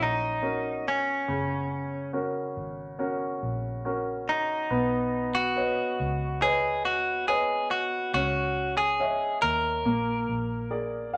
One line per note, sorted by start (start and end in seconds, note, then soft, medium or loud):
0.00 1.24 A#1 medium
0.00 1.24 F#3 medium
0.00 0.42 C#4 soft
0.00 0.88 D#4 medium
0.00 0.42 F#4 soft
0.00 0.42 A#4 soft
0.42 1.25 C#4 soft
0.42 1.25 F#4 soft
0.42 1.25 A#4 soft
0.88 2.11 C#4 medium
1.28 2.31 F#1 medium
1.28 4.67 C#3 medium
2.13 2.97 C#4 soft
2.13 2.97 F#4 soft
2.13 2.97 A#4 soft
2.57 3.38 G#1 medium
2.99 3.82 C#4 soft
2.99 3.82 F#4 soft
2.99 3.83 A#4 soft
3.43 4.67 A#1 medium
3.85 4.68 C#4 soft
3.85 4.68 F#4 soft
3.85 4.69 A#4 soft
4.29 5.32 D#4 medium
4.71 5.74 B1 medium
4.71 8.10 B3 medium
5.35 6.42 F#4 medium
5.56 6.39 B4 soft
5.56 6.40 C#5 soft
5.56 6.40 D#5 soft
6.00 8.10 C#2 medium
6.42 6.85 G#4 medium
6.42 7.25 B4 soft
6.42 7.25 C#5 soft
6.42 7.26 D#5 soft
6.85 7.28 F#4 medium
7.28 7.68 G#4 medium
7.28 8.11 B4 soft
7.28 8.11 C#5 soft
7.28 8.12 D#5 soft
7.71 8.13 F#4 medium
8.14 9.17 C#2 medium
8.14 9.82 C#4 medium
8.14 8.77 F#4 medium
8.77 9.38 G#4 medium
9.00 9.83 C#5 soft
9.00 9.83 D#5 soft
9.00 9.83 E5 soft
9.42 9.82 D#2 medium
9.42 11.10 A#4 medium
9.85 10.25 A#1 medium
9.85 11.17 A#3 medium
10.29 11.17 A#1 medium
10.71 11.17 G#4 soft
10.71 11.17 A#4 soft
10.71 11.17 D5 soft
11.14 11.17 F5 medium